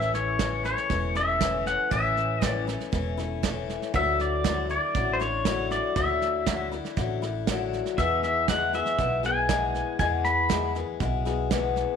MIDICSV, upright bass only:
0, 0, Header, 1, 2, 480
1, 0, Start_track
1, 0, Key_signature, 3, "major"
1, 0, Tempo, 505051
1, 1823, Time_signature, 4, 2, 24, 8
1, 11368, End_track
2, 0, Start_track
2, 0, Title_t, "Upright bass"
2, 0, Program_c, 0, 32
2, 0, Note_on_c, 0, 33, 86
2, 680, Note_off_c, 0, 33, 0
2, 859, Note_on_c, 0, 28, 76
2, 1642, Note_off_c, 0, 28, 0
2, 1822, Note_on_c, 0, 33, 81
2, 2604, Note_off_c, 0, 33, 0
2, 2783, Note_on_c, 0, 28, 75
2, 3564, Note_off_c, 0, 28, 0
2, 3748, Note_on_c, 0, 38, 81
2, 4527, Note_off_c, 0, 38, 0
2, 4707, Note_on_c, 0, 33, 76
2, 5486, Note_off_c, 0, 33, 0
2, 5668, Note_on_c, 0, 38, 83
2, 6447, Note_off_c, 0, 38, 0
2, 6627, Note_on_c, 0, 33, 80
2, 7406, Note_off_c, 0, 33, 0
2, 7584, Note_on_c, 0, 40, 81
2, 8364, Note_off_c, 0, 40, 0
2, 8543, Note_on_c, 0, 35, 76
2, 9324, Note_off_c, 0, 35, 0
2, 9499, Note_on_c, 0, 40, 87
2, 10281, Note_off_c, 0, 40, 0
2, 10462, Note_on_c, 0, 35, 79
2, 11241, Note_off_c, 0, 35, 0
2, 11368, End_track
0, 0, End_of_file